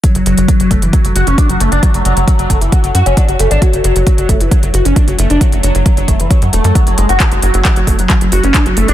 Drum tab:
HH |xxxxxxxxxxxxxxxx|xxxxxxxxxxxxxxxx|xxxxxxxxxxxxxxxx|xxxxxxxxxxxxxxxx|
CP |----------------|----------------|----------------|----------------|
BD |o---o-o-o---o---|o---o-o-o---o---|o---o-o-o---o---|o---o-o-o---o---|

HH |xxoxxxoxxxoxxxox|
CP |x---x---x---x---|
BD |o---o-o-o---o---|